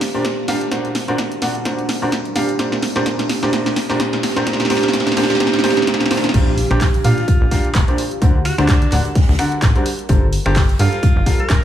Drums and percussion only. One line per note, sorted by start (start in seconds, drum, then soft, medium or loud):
0.01 kick medium
0.01 snare medium
0.01 open hi-hat loud
0.25 kick loud
0.25 snare medium
0.25 closed hi-hat medium
0.48 snare medium
0.48 open hi-hat loud
0.61 closed hi-hat medium
0.72 kick loud
0.72 snare medium
0.72 closed hi-hat medium
0.85 closed hi-hat soft
0.95 snare medium
0.95 open hi-hat loud
1.08 closed hi-hat soft
1.18 kick loud
1.18 snare medium
1.18 closed hi-hat medium
1.32 closed hi-hat medium
1.42 snare medium
1.42 open hi-hat loud
1.55 closed hi-hat soft
1.65 kick loud
1.65 snare medium
1.65 closed hi-hat medium
1.79 closed hi-hat soft
1.89 snare medium
1.89 open hi-hat loud
2.12 kick loud
2.12 snare medium
2.12 closed hi-hat medium
2.25 closed hi-hat soft
2.36 snare medium
2.36 open hi-hat loud
2.49 closed hi-hat medium
2.59 kick loud
2.59 snare medium
2.59 closed hi-hat medium
2.72 snare medium
2.82 snare medium
2.82 open hi-hat loud
2.96 snare medium
2.96 closed hi-hat soft
3.06 kick loud
3.06 snare loud
3.06 closed hi-hat medium
3.19 snare medium
3.19 closed hi-hat medium
3.29 snare loud
3.29 open hi-hat loud
3.43 snare medium
3.43 closed hi-hat soft
3.53 kick loud
3.53 snare loud
3.53 closed hi-hat medium
3.66 snare medium
3.66 closed hi-hat soft
3.76 kick medium
3.76 snare loud
3.76 open hi-hat loud
3.90 snare medium
4.00 kick loud
4.00 snare loud
4.00 closed hi-hat medium
4.13 snare medium
4.23 snare loud
4.23 open hi-hat loud
4.36 snare medium
4.36 closed hi-hat medium
4.47 kick loud
4.47 snare loud
4.47 closed hi-hat medium
4.53 snare medium
4.60 snare medium
4.60 closed hi-hat soft
4.65 snare medium
4.70 snare loud
4.70 open hi-hat loud
4.77 snare medium
4.83 snare medium
4.83 closed hi-hat soft
4.88 snare medium
4.93 kick loud
4.93 snare loud
4.93 closed hi-hat medium
5.00 snare medium
5.07 snare medium
5.07 closed hi-hat medium
5.12 snare loud
5.17 snare loud
5.17 open hi-hat loud
5.23 snare medium
5.30 snare medium
5.30 closed hi-hat soft
5.35 snare loud
5.40 kick loud
5.40 snare loud
5.40 closed hi-hat medium
5.47 snare loud
5.53 snare medium
5.53 closed hi-hat soft
5.59 snare medium
5.64 snare loud
5.64 open hi-hat loud
5.70 snare loud
5.77 snare medium
5.77 closed hi-hat soft
5.82 snare medium
5.87 kick loud
5.87 snare loud
5.87 closed hi-hat medium
5.94 snare loud
6.00 snare loud
6.00 closed hi-hat soft
6.06 snare loud
6.11 snare loud
6.11 open hi-hat loud
6.17 snare loud
6.24 snare loud
6.24 closed hi-hat medium
6.29 snare loud
6.34 kick loud
6.34 closed hi-hat medium
6.34 crash loud
6.57 closed hi-hat medium
6.57 open hi-hat loud
6.71 finger snap medium
6.81 kick loud
6.81 snare loud
6.81 clap loud
6.81 closed hi-hat medium
6.81 open hi-hat medium
6.94 closed hi-hat medium
7.04 snare soft
7.04 closed hi-hat medium
7.04 open hi-hat loud
7.18 snare medium
7.18 closed hi-hat soft
7.28 kick loud
7.28 closed hi-hat medium
7.51 kick medium
7.51 snare medium
7.51 closed hi-hat medium
7.51 open hi-hat loud
7.65 closed hi-hat soft
7.75 kick loud
7.75 snare loud
7.75 clap loud
7.75 closed hi-hat medium
7.88 closed hi-hat soft
7.98 closed hi-hat medium
7.98 open hi-hat loud
8.11 closed hi-hat medium
8.22 kick loud
8.22 closed hi-hat medium
8.45 finger snap medium
8.45 closed hi-hat medium
8.45 open hi-hat loud
8.58 finger snap medium
8.58 snare soft
8.58 closed hi-hat soft
8.68 kick loud
8.68 snare loud
8.68 clap loud
8.68 closed hi-hat medium
8.82 closed hi-hat medium
8.92 clap soft
8.92 closed hi-hat medium
8.92 open hi-hat loud
9.05 closed hi-hat soft
9.15 kick loud
9.15 snare medium
9.15 closed hi-hat medium
9.15 open hi-hat medium
9.22 snare medium
9.22 open hi-hat medium
9.29 snare medium
9.29 open hi-hat medium
9.34 snare medium
9.34 open hi-hat medium
9.39 finger snap medium
9.39 closed hi-hat medium
9.39 open hi-hat loud
9.52 closed hi-hat soft
9.62 kick loud
9.62 snare loud
9.62 clap loud
9.62 closed hi-hat medium
9.76 closed hi-hat soft
9.86 closed hi-hat medium
9.86 open hi-hat loud
9.99 closed hi-hat medium
10.09 kick loud
10.09 closed hi-hat medium
10.32 closed hi-hat medium
10.32 open hi-hat loud
10.46 finger snap medium
10.46 closed hi-hat soft
10.56 kick loud
10.56 snare loud
10.56 clap loud
10.56 closed hi-hat medium
10.56 open hi-hat medium
10.69 closed hi-hat medium
10.79 snare soft
10.79 closed hi-hat medium
10.79 open hi-hat loud
10.92 snare soft
10.92 closed hi-hat soft
11.03 kick loud
11.03 closed hi-hat loud
11.03 closed hi-hat medium
11.26 kick medium
11.26 snare medium
11.26 closed hi-hat medium
11.26 open hi-hat loud
11.40 closed hi-hat soft
11.49 kick loud
11.49 snare loud
11.49 clap loud
11.49 closed hi-hat medium